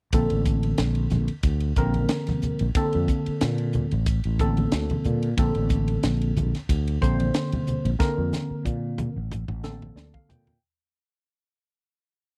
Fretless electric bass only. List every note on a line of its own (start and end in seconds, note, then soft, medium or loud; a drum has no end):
0.13 0.28 A#1 medium
0.32 0.72 A1 medium
0.79 1.07 A#1 medium
1.12 1.27 A#1 medium
1.44 1.72 D2 medium
1.77 2.05 A#1 medium
2.43 muted fretless electric bass stroke soft
2.61 2.74 A#1 medium
2.95 3.07 F2 medium
3.28 muted fretless electric bass stroke soft
3.42 3.84 A#2 medium
3.93 4.20 A1 medium
4.26 4.65 A1 medium
4.73 4.88 D2 medium
5.06 5.33 A#2 medium
5.37 5.53 A#1 medium
5.56 5.96 A1 medium
6.04 6.32 A#1 medium
6.37 6.52 A#1 medium
6.69 6.97 D2 medium
7.01 7.29 A#1 medium
7.68 muted fretless electric bass stroke soft
7.85 7.98 A#1 medium
8.00 muted fretless electric bass stroke soft
8.18 8.31 F2 medium
8.51 muted fretless electric bass stroke soft
8.65 9.08 A#2 medium
9.16 9.44 A1 medium
9.48 9.89 A1 medium
9.96 10.11 D2 medium
10.29 10.57 A#2 medium